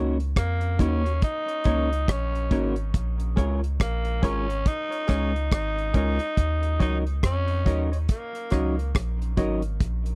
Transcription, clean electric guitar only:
0.00 0.16 A#3 medium
0.00 0.16 C#4 medium
0.00 0.16 F#4 medium
0.00 0.17 A#4 loud
0.79 1.02 A#3 medium
0.79 1.02 C#4 medium
0.79 1.03 F#4 medium
0.79 1.03 A#4 loud
1.65 1.88 A#3 medium
1.65 1.88 C#4 medium
1.65 1.88 F#4 medium
1.65 1.89 A#4 medium
2.51 2.74 A#3 medium
2.51 2.74 C#4 medium
2.51 2.74 F#4 medium
2.51 2.74 A#4 medium
3.37 3.59 G#3 medium
3.37 3.60 C#4 medium
3.37 3.60 F4 loud
3.37 3.60 A#4 loud
4.23 4.45 G#3 medium
4.23 4.46 C#4 medium
4.23 4.46 F4 loud
4.23 4.46 A#4 medium
5.08 5.31 G#3 medium
5.08 5.31 C#4 medium
5.08 5.32 F4 medium
5.08 5.32 A#4 loud
5.94 6.17 G#3 medium
5.94 6.17 C#4 medium
5.94 6.17 F4 medium
5.94 6.17 A#4 medium
6.80 7.03 F#3 medium
6.80 7.03 C#4 medium
6.80 7.03 D#4 medium
6.80 7.03 A#4 medium
7.66 7.89 F#3 medium
7.66 7.89 C#4 medium
7.66 7.89 D#4 medium
7.66 7.89 A#4 medium
8.52 8.74 F#3 medium
8.52 8.74 C#4 medium
8.52 8.75 D#4 medium
8.52 8.75 A#4 loud
9.37 9.60 F#3 medium
9.37 9.60 C#4 medium
9.37 9.60 D#4 medium
9.37 9.61 A#4 loud

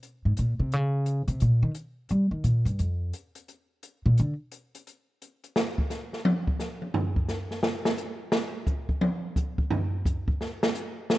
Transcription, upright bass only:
0.25 0.37 G#2 medium
0.39 0.59 A#2 medium
0.59 0.73 C3 medium
0.73 1.27 C#3 loud
1.28 1.40 C3 medium
1.42 1.62 A#2 medium
1.63 1.70 D#3 medium
2.11 2.31 G3 loud
2.31 2.43 D#3 medium
2.44 2.65 A#2 medium
2.65 2.78 G2 medium
2.79 3.11 F2 medium
4.06 4.17 A#2 medium
4.20 4.32 D3 medium

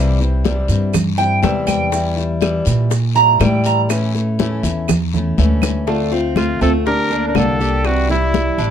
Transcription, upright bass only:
0.00 0.63 C2 medium
0.69 1.39 G2 medium
1.43 2.60 E2 medium
2.67 3.37 A#2 medium
3.40 4.57 A2 medium
4.63 5.33 E2 loud
5.38 6.55 D2 loud
6.61 7.31 D2 medium
7.35 8.52 C2 medium
8.58 8.71 A1 medium

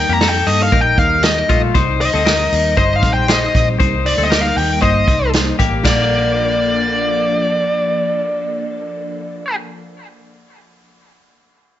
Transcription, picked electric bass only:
0.09 0.42 F2 medium
0.47 0.69 G2 medium
0.72 0.94 A#1 medium
0.98 1.42 D#2 loud
1.50 1.71 A#1 medium
1.75 2.08 C2 loud
2.14 2.47 D2 loud
2.53 2.74 D#2 medium
2.78 3.03 G1 loud
3.03 3.47 A#1 medium
3.55 3.77 A#1 loud
3.80 4.13 C2 loud
4.18 4.51 D2 medium
4.57 4.79 D#2 loud
4.82 5.04 G1 loud
5.08 5.51 C2 medium
5.60 5.81 A1 medium
5.85 9.55 A#1 medium

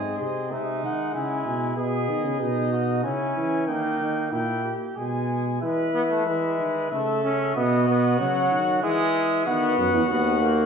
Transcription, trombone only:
0.00 0.54 C4 medium
0.52 1.76 G#3 medium
1.76 2.39 B3 medium
2.40 3.03 D#4 medium
3.04 3.66 C#4 medium
3.68 4.31 A#3 medium
4.32 4.74 A#3 medium
4.97 5.58 G#3 medium
5.62 5.92 G#3 medium
5.94 6.01 B3 medium
6.10 6.26 A3 medium
6.26 6.90 G#3 medium
6.92 7.23 A3 medium
7.24 7.55 C#4 medium
7.56 7.87 B3 loud
7.88 8.19 B3 loud
8.19 8.82 F#3 loud
8.83 9.45 G#3 loud
9.47 10.08 B3 medium
10.10 10.40 B3 loud
10.41 10.66 A#3 medium

